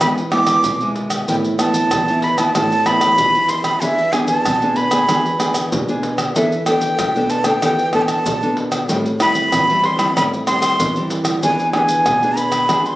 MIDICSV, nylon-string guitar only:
0, 0, Header, 1, 2, 480
1, 0, Start_track
1, 0, Key_signature, 0, "minor"
1, 0, Tempo, 634249
1, 970, Time_signature, 4, 2, 24, 8
1, 9805, End_track
2, 0, Start_track
2, 0, Title_t, "Nylon-string guitar"
2, 0, Program_c, 0, 24
2, 7, Note_on_c, 0, 52, 70
2, 10, Note_on_c, 0, 56, 61
2, 13, Note_on_c, 0, 59, 60
2, 14, Note_on_c, 0, 64, 67
2, 151, Note_off_c, 0, 56, 0
2, 153, Note_off_c, 0, 59, 0
2, 153, Note_off_c, 0, 64, 0
2, 246, Note_on_c, 0, 56, 52
2, 247, Note_on_c, 0, 59, 62
2, 250, Note_on_c, 0, 64, 61
2, 465, Note_off_c, 0, 52, 0
2, 491, Note_on_c, 0, 47, 70
2, 570, Note_off_c, 0, 56, 0
2, 570, Note_off_c, 0, 59, 0
2, 571, Note_off_c, 0, 64, 0
2, 617, Note_on_c, 0, 56, 61
2, 622, Note_on_c, 0, 59, 56
2, 624, Note_on_c, 0, 64, 70
2, 935, Note_off_c, 0, 56, 0
2, 937, Note_off_c, 0, 59, 0
2, 939, Note_off_c, 0, 64, 0
2, 946, Note_off_c, 0, 47, 0
2, 968, Note_on_c, 0, 45, 70
2, 970, Note_on_c, 0, 52, 56
2, 975, Note_on_c, 0, 59, 57
2, 976, Note_on_c, 0, 64, 62
2, 1171, Note_off_c, 0, 52, 0
2, 1172, Note_off_c, 0, 59, 0
2, 1174, Note_off_c, 0, 64, 0
2, 1205, Note_on_c, 0, 52, 58
2, 1208, Note_on_c, 0, 59, 67
2, 1211, Note_on_c, 0, 64, 65
2, 1426, Note_off_c, 0, 45, 0
2, 1443, Note_off_c, 0, 52, 0
2, 1452, Note_on_c, 0, 52, 72
2, 1530, Note_off_c, 0, 59, 0
2, 1531, Note_off_c, 0, 64, 0
2, 1572, Note_off_c, 0, 52, 0
2, 1581, Note_on_c, 0, 52, 69
2, 1587, Note_on_c, 0, 59, 66
2, 1589, Note_on_c, 0, 64, 77
2, 1777, Note_off_c, 0, 52, 0
2, 1780, Note_off_c, 0, 59, 0
2, 1780, Note_off_c, 0, 64, 0
2, 1804, Note_on_c, 0, 52, 67
2, 1809, Note_on_c, 0, 64, 67
2, 1810, Note_on_c, 0, 59, 67
2, 1889, Note_off_c, 0, 52, 0
2, 1890, Note_off_c, 0, 59, 0
2, 1891, Note_off_c, 0, 64, 0
2, 1934, Note_on_c, 0, 45, 69
2, 1936, Note_on_c, 0, 52, 59
2, 1938, Note_on_c, 0, 59, 53
2, 1941, Note_on_c, 0, 64, 65
2, 2072, Note_off_c, 0, 52, 0
2, 2075, Note_off_c, 0, 59, 0
2, 2076, Note_off_c, 0, 64, 0
2, 2165, Note_on_c, 0, 52, 52
2, 2170, Note_on_c, 0, 59, 57
2, 2171, Note_on_c, 0, 64, 62
2, 2388, Note_off_c, 0, 45, 0
2, 2403, Note_off_c, 0, 52, 0
2, 2412, Note_on_c, 0, 52, 68
2, 2491, Note_off_c, 0, 59, 0
2, 2491, Note_off_c, 0, 64, 0
2, 2525, Note_off_c, 0, 52, 0
2, 2534, Note_on_c, 0, 52, 60
2, 2537, Note_on_c, 0, 59, 58
2, 2542, Note_on_c, 0, 64, 71
2, 2853, Note_off_c, 0, 52, 0
2, 2855, Note_off_c, 0, 59, 0
2, 2856, Note_off_c, 0, 64, 0
2, 2891, Note_on_c, 0, 52, 69
2, 2892, Note_on_c, 0, 59, 59
2, 2893, Note_on_c, 0, 62, 53
2, 2899, Note_on_c, 0, 68, 63
2, 3031, Note_off_c, 0, 59, 0
2, 3033, Note_off_c, 0, 62, 0
2, 3034, Note_off_c, 0, 68, 0
2, 3124, Note_on_c, 0, 59, 64
2, 3129, Note_on_c, 0, 62, 64
2, 3132, Note_on_c, 0, 68, 66
2, 3346, Note_off_c, 0, 52, 0
2, 3372, Note_on_c, 0, 47, 68
2, 3449, Note_off_c, 0, 59, 0
2, 3449, Note_off_c, 0, 62, 0
2, 3452, Note_off_c, 0, 68, 0
2, 3501, Note_on_c, 0, 59, 61
2, 3506, Note_on_c, 0, 62, 66
2, 3509, Note_on_c, 0, 68, 68
2, 3697, Note_off_c, 0, 59, 0
2, 3698, Note_off_c, 0, 62, 0
2, 3701, Note_off_c, 0, 68, 0
2, 3721, Note_on_c, 0, 59, 61
2, 3727, Note_on_c, 0, 62, 60
2, 3728, Note_on_c, 0, 68, 76
2, 3807, Note_off_c, 0, 59, 0
2, 3809, Note_off_c, 0, 62, 0
2, 3810, Note_off_c, 0, 68, 0
2, 3827, Note_off_c, 0, 47, 0
2, 3852, Note_on_c, 0, 52, 67
2, 3857, Note_on_c, 0, 59, 54
2, 3858, Note_on_c, 0, 62, 57
2, 3861, Note_on_c, 0, 68, 67
2, 4053, Note_off_c, 0, 59, 0
2, 4055, Note_off_c, 0, 62, 0
2, 4056, Note_off_c, 0, 68, 0
2, 4084, Note_on_c, 0, 59, 55
2, 4088, Note_on_c, 0, 62, 57
2, 4093, Note_on_c, 0, 68, 63
2, 4307, Note_off_c, 0, 52, 0
2, 4312, Note_off_c, 0, 59, 0
2, 4314, Note_off_c, 0, 62, 0
2, 4315, Note_off_c, 0, 68, 0
2, 4330, Note_on_c, 0, 47, 73
2, 4456, Note_on_c, 0, 59, 58
2, 4459, Note_on_c, 0, 62, 64
2, 4464, Note_on_c, 0, 68, 61
2, 4774, Note_off_c, 0, 59, 0
2, 4776, Note_off_c, 0, 62, 0
2, 4778, Note_off_c, 0, 68, 0
2, 4786, Note_off_c, 0, 47, 0
2, 4814, Note_on_c, 0, 52, 65
2, 4816, Note_on_c, 0, 59, 51
2, 4822, Note_on_c, 0, 62, 50
2, 4822, Note_on_c, 0, 69, 60
2, 4955, Note_off_c, 0, 59, 0
2, 4956, Note_off_c, 0, 62, 0
2, 4957, Note_off_c, 0, 69, 0
2, 5050, Note_on_c, 0, 59, 57
2, 5054, Note_on_c, 0, 62, 57
2, 5054, Note_on_c, 0, 69, 61
2, 5268, Note_off_c, 0, 52, 0
2, 5292, Note_on_c, 0, 47, 69
2, 5372, Note_off_c, 0, 59, 0
2, 5373, Note_off_c, 0, 62, 0
2, 5374, Note_off_c, 0, 69, 0
2, 5417, Note_on_c, 0, 59, 63
2, 5421, Note_on_c, 0, 62, 66
2, 5425, Note_on_c, 0, 69, 73
2, 5615, Note_off_c, 0, 59, 0
2, 5617, Note_off_c, 0, 62, 0
2, 5619, Note_off_c, 0, 69, 0
2, 5641, Note_on_c, 0, 59, 66
2, 5645, Note_on_c, 0, 62, 68
2, 5648, Note_on_c, 0, 69, 70
2, 5728, Note_off_c, 0, 59, 0
2, 5728, Note_off_c, 0, 62, 0
2, 5731, Note_off_c, 0, 69, 0
2, 5747, Note_off_c, 0, 47, 0
2, 5774, Note_on_c, 0, 52, 68
2, 5779, Note_on_c, 0, 59, 55
2, 5780, Note_on_c, 0, 62, 57
2, 5785, Note_on_c, 0, 69, 63
2, 5915, Note_off_c, 0, 59, 0
2, 5916, Note_off_c, 0, 62, 0
2, 5917, Note_off_c, 0, 69, 0
2, 6010, Note_on_c, 0, 59, 58
2, 6014, Note_on_c, 0, 62, 60
2, 6014, Note_on_c, 0, 69, 60
2, 6229, Note_off_c, 0, 52, 0
2, 6236, Note_off_c, 0, 59, 0
2, 6237, Note_off_c, 0, 69, 0
2, 6238, Note_off_c, 0, 62, 0
2, 6251, Note_on_c, 0, 47, 69
2, 6376, Note_on_c, 0, 59, 65
2, 6379, Note_on_c, 0, 62, 67
2, 6381, Note_on_c, 0, 69, 64
2, 6695, Note_off_c, 0, 59, 0
2, 6697, Note_off_c, 0, 62, 0
2, 6697, Note_off_c, 0, 69, 0
2, 6707, Note_off_c, 0, 47, 0
2, 6729, Note_on_c, 0, 45, 69
2, 6732, Note_on_c, 0, 55, 51
2, 6733, Note_on_c, 0, 60, 60
2, 6736, Note_on_c, 0, 64, 64
2, 6872, Note_off_c, 0, 55, 0
2, 6873, Note_off_c, 0, 60, 0
2, 6875, Note_off_c, 0, 64, 0
2, 6959, Note_on_c, 0, 55, 65
2, 6962, Note_on_c, 0, 60, 59
2, 6964, Note_on_c, 0, 64, 68
2, 7186, Note_off_c, 0, 45, 0
2, 7211, Note_on_c, 0, 52, 70
2, 7287, Note_off_c, 0, 55, 0
2, 7288, Note_off_c, 0, 60, 0
2, 7289, Note_off_c, 0, 64, 0
2, 7339, Note_on_c, 0, 55, 71
2, 7342, Note_on_c, 0, 60, 60
2, 7345, Note_on_c, 0, 64, 75
2, 7537, Note_off_c, 0, 55, 0
2, 7539, Note_off_c, 0, 60, 0
2, 7539, Note_off_c, 0, 64, 0
2, 7558, Note_on_c, 0, 55, 65
2, 7563, Note_on_c, 0, 60, 65
2, 7564, Note_on_c, 0, 64, 71
2, 7647, Note_off_c, 0, 55, 0
2, 7648, Note_off_c, 0, 60, 0
2, 7649, Note_off_c, 0, 64, 0
2, 7667, Note_off_c, 0, 52, 0
2, 7693, Note_on_c, 0, 45, 70
2, 7696, Note_on_c, 0, 55, 58
2, 7700, Note_on_c, 0, 60, 56
2, 7700, Note_on_c, 0, 64, 64
2, 7896, Note_off_c, 0, 55, 0
2, 7897, Note_off_c, 0, 60, 0
2, 7897, Note_off_c, 0, 64, 0
2, 7921, Note_on_c, 0, 55, 58
2, 7926, Note_on_c, 0, 60, 60
2, 7931, Note_on_c, 0, 64, 65
2, 8149, Note_off_c, 0, 45, 0
2, 8152, Note_off_c, 0, 55, 0
2, 8154, Note_off_c, 0, 60, 0
2, 8156, Note_off_c, 0, 64, 0
2, 8169, Note_on_c, 0, 52, 71
2, 8300, Note_on_c, 0, 55, 60
2, 8303, Note_on_c, 0, 60, 65
2, 8305, Note_on_c, 0, 64, 63
2, 8618, Note_off_c, 0, 55, 0
2, 8619, Note_off_c, 0, 60, 0
2, 8620, Note_off_c, 0, 64, 0
2, 8626, Note_off_c, 0, 52, 0
2, 8655, Note_on_c, 0, 52, 76
2, 8655, Note_on_c, 0, 59, 58
2, 8660, Note_on_c, 0, 68, 63
2, 8661, Note_on_c, 0, 62, 58
2, 8855, Note_off_c, 0, 59, 0
2, 8856, Note_off_c, 0, 62, 0
2, 8857, Note_off_c, 0, 68, 0
2, 8889, Note_on_c, 0, 59, 62
2, 8893, Note_on_c, 0, 62, 67
2, 8897, Note_on_c, 0, 68, 68
2, 9110, Note_off_c, 0, 52, 0
2, 9116, Note_off_c, 0, 59, 0
2, 9117, Note_off_c, 0, 62, 0
2, 9119, Note_off_c, 0, 68, 0
2, 9133, Note_on_c, 0, 47, 70
2, 9257, Note_on_c, 0, 59, 69
2, 9261, Note_on_c, 0, 62, 63
2, 9264, Note_on_c, 0, 68, 70
2, 9576, Note_off_c, 0, 59, 0
2, 9578, Note_off_c, 0, 62, 0
2, 9579, Note_off_c, 0, 68, 0
2, 9588, Note_off_c, 0, 47, 0
2, 9603, Note_on_c, 0, 52, 72
2, 9605, Note_on_c, 0, 59, 57
2, 9610, Note_on_c, 0, 62, 63
2, 9612, Note_on_c, 0, 68, 60
2, 9805, Note_off_c, 0, 52, 0
2, 9805, Note_off_c, 0, 59, 0
2, 9805, Note_off_c, 0, 62, 0
2, 9805, Note_off_c, 0, 68, 0
2, 9805, End_track
0, 0, End_of_file